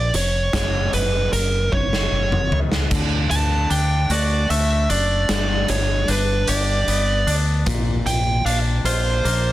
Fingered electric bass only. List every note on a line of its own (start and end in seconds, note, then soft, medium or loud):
0.00 0.10 A#1 medium
0.13 0.50 F1 medium
0.53 0.90 F#1 medium
0.93 1.29 F#1 medium
1.32 1.69 F#1 medium
1.73 2.09 F#1 medium
2.12 2.48 F#1 medium
2.51 2.88 C#2 medium
2.91 3.28 D2 medium
3.31 3.67 D2 medium
3.70 4.07 D2 medium
4.09 4.46 D2 medium
4.50 4.86 D2 medium
4.90 5.26 F#1 medium
5.29 5.65 G1 medium
5.69 6.05 G1 medium
6.08 6.45 G1 medium
6.48 6.84 G1 medium
6.87 7.24 G1 medium
7.26 7.63 D2 medium
7.67 8.03 A#1 loud
8.05 8.42 A#1 medium
8.45 8.82 A#1 medium
8.84 9.21 A#1 medium
9.25 9.52 A#1 medium